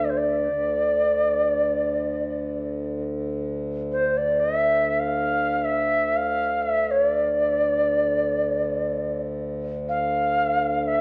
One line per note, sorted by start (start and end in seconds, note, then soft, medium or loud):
0.00 0.48 D2 medium
0.05 0.11 D5 medium
0.10 0.19 C5 medium
0.18 2.38 D5 medium
0.50 11.01 D2 medium
3.92 4.19 C5 medium
4.17 4.41 D5 medium
4.40 5.01 E5 medium
4.99 5.66 F5 medium
5.65 6.18 E5 medium
6.17 6.64 F5 medium
6.63 6.92 E5 medium
6.91 7.05 C#5 medium
7.05 9.18 D5 medium
9.89 10.89 F5 medium
10.87 11.01 E5 medium